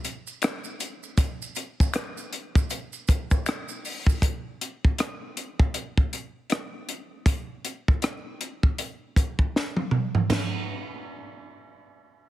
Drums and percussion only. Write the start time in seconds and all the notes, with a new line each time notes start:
0.05 closed hi-hat, maracas
0.27 maracas
0.42 finger snap, cross-stick, closed hi-hat, maracas
0.64 maracas
0.80 closed hi-hat, maracas
1.03 maracas
1.18 kick, closed hi-hat, maracas
1.42 maracas
1.55 closed hi-hat, maracas
1.80 kick, maracas
1.94 finger snap, cross-stick, closed hi-hat, maracas
2.17 maracas
2.33 closed hi-hat
2.55 kick, maracas
2.70 closed hi-hat, maracas
2.93 maracas
3.08 kick, closed hi-hat, maracas
3.31 kick, maracas
3.46 finger snap, cross-stick, closed hi-hat, maracas
3.69 maracas
3.85 open hi-hat, maracas
4.07 kick, maracas
4.22 kick, closed hi-hat
4.61 closed hi-hat
4.85 kick
4.98 cross-stick, closed hi-hat
5.37 closed hi-hat
5.60 kick
5.74 closed hi-hat
5.98 kick
6.13 closed hi-hat
6.50 cross-stick, closed hi-hat
6.89 closed hi-hat
7.26 kick, closed hi-hat
7.65 closed hi-hat
7.88 kick
8.02 cross-stick, closed hi-hat
8.41 closed hi-hat
8.63 kick
8.78 closed hi-hat
9.16 kick, closed hi-hat
9.39 kick
9.56 snare
9.77 high tom
9.91 mid tom
10.15 floor tom
10.30 snare, floor tom, crash